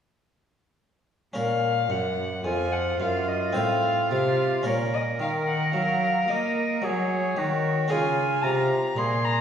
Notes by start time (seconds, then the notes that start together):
1.33 A#2 C#4 A#4 F5
1.90 F#2 F#5
2.45 F2 F4 G#5
2.72 F#5
3.00 F#2 F5
3.28 D#5
3.53 A2 C4 C5 F5
4.11 C3 F5
4.63 A#2 C#4 A#4 C#5
4.94 D#5
5.20 D#3 F5
5.48 F#5
5.73 F#3 F5
6.28 A#3 D#5
6.82 F#3 G#4 C#5
7.37 D#3 F#4
7.88 C#3 C#4 F4 G#4 G#5
8.44 C3 A#5
8.97 A#2 G#4 C6
9.25 A#5